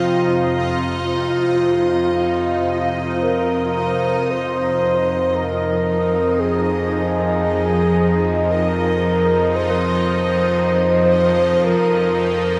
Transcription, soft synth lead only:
0.00 3.19 F4 loud
3.23 4.32 A#4 medium
4.31 5.36 C5 loud
5.35 6.41 A#4 loud
6.39 8.52 G#4 loud
8.50 9.57 A#4 loud
9.55 11.66 C5 loud
11.65 12.60 A#4 medium

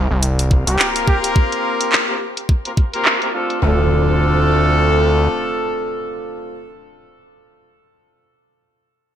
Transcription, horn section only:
0.51 2.05 A#3 loud
0.51 2.05 C4 loud
0.51 2.05 F4 medium
0.51 2.05 G4 medium
0.51 2.05 A#4 loud
2.09 2.15 A#3 medium
2.09 2.15 C4 medium
2.09 2.15 F4 medium
2.09 2.15 G4 medium
2.09 2.15 A#4 medium
2.65 2.71 A#3 medium
2.65 2.71 C4 medium
2.65 2.71 F4 medium
2.65 2.71 G4 medium
2.65 2.71 A#4 medium
2.94 3.18 A#3 medium
2.94 3.18 C4 medium
2.94 3.18 F4 medium
2.94 3.18 G4 medium
2.94 3.18 A#4 loud
3.22 3.28 A#3 medium
3.22 3.28 C4 medium
3.22 3.28 F4 medium
3.22 3.28 G4 medium
3.22 3.28 A#4 medium
3.34 3.61 A3 medium
3.34 3.61 C4 medium
3.34 3.61 D4 medium
3.34 3.61 F4 medium
3.34 3.61 A4 medium
3.62 6.64 A3 medium
3.62 6.64 C4 medium
3.62 6.64 D4 medium
3.62 6.64 F4 medium
3.62 6.64 A4 loud

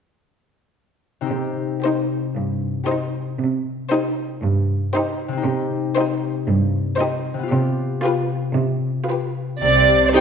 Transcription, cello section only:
1.30 1.72 C3 soft
2.36 2.77 G2 soft
3.39 3.80 C3 soft
4.42 4.83 G2 soft
5.45 5.86 C3 medium
6.48 6.88 G2 medium
7.51 7.92 C3 medium
8.55 8.97 C3 soft
9.61 10.05 C3 soft

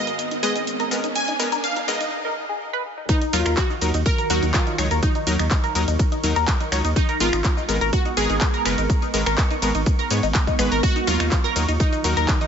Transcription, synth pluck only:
0.00 0.40 D#5 loud
0.43 1.18 D#5 loud
1.16 1.65 G#5 loud
1.64 1.89 F5 loud
1.88 2.13 D#5 loud
3.09 3.34 D#4 loud
3.33 3.56 F4 loud
3.57 4.07 F#4 loud
4.06 4.31 A#4 loud
4.30 4.55 F#4 loud
4.54 4.99 F4 loud
5.03 6.44 D#4 medium
6.96 7.07 D#4 medium
7.20 7.89 F4 loud
7.93 8.18 F#4 loud
8.17 8.67 G#4 loud
8.65 9.58 A#4 loud
10.83 11.06 F#4 loud
11.07 11.82 F4 loud
11.80 12.47 D#4 medium

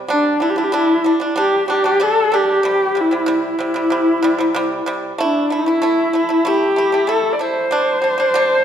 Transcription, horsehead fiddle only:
0.10 0.43 D4 medium
0.41 0.51 E4 medium
0.50 0.58 G4 medium
0.57 0.65 E4 medium
0.63 0.74 G4 medium
0.72 1.05 E4 loud
1.38 1.67 G4 medium
1.69 2.04 G4 medium
2.03 2.36 A4 medium
2.35 3.02 G4 medium
3.00 3.30 E4 medium
3.32 4.85 E4 medium
5.21 5.53 D4 medium
5.52 6.49 E4 medium
6.47 7.10 G4 medium
7.09 7.34 A4 medium
7.33 7.42 D5 medium
7.41 8.64 C5 medium

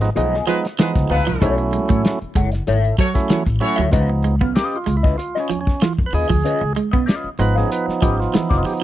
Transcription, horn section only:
0.47 0.58 G#3 medium
0.47 0.58 F4 medium
0.47 0.58 B4 loud
0.79 0.90 G#3 medium
0.79 0.90 F4 medium
0.79 0.90 B4 medium
1.11 1.51 F#3 loud
1.11 1.51 E4 loud
1.11 1.51 B4 loud
2.99 3.10 A3 medium
2.99 3.10 F#4 medium
2.99 3.10 C#5 loud
3.30 3.41 A3 medium
3.30 3.41 F#4 medium
3.30 3.41 C#5 medium
3.62 3.82 A3 medium
3.62 3.82 F#4 loud
3.62 3.82 C#5 loud

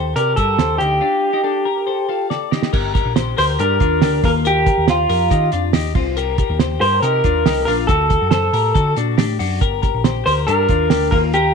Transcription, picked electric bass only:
0.00 0.13 D#2 medium
0.16 0.34 C3 medium
0.38 0.56 G2 medium
0.59 0.77 D#2 medium
0.81 0.99 D2 medium
2.73 3.01 G1 loud
3.05 3.33 A#1 medium
3.38 3.56 D2 medium
3.60 3.78 G2 loud
3.81 3.99 D#2 medium
4.02 4.20 D2 loud
4.24 4.69 D#2 loud
4.78 5.05 D#2 medium
5.10 5.28 F2 loud
5.31 5.49 D#3 loud
5.53 5.71 F2 loud
5.74 5.92 D#2 loud
5.95 6.41 C2 loud
6.50 6.77 D#2 loud
6.81 6.99 G2 loud
7.03 7.21 C3 loud
7.25 7.43 D#2 medium
7.45 7.64 C2 loud
7.67 7.86 A#1 loud
7.89 8.16 D2 loud
8.22 8.49 F#2 medium
8.53 8.72 A2 medium
8.76 8.94 D3 loud
8.97 9.15 A#2 medium
9.19 9.37 A2 loud
9.40 9.58 F#2 medium
9.62 9.89 G1 loud
9.94 10.22 A#1 medium
10.26 10.44 D2 loud
10.48 10.66 G2 loud
10.69 10.88 D#2 medium
10.91 11.09 D2 loud
11.12 11.54 D#2 loud

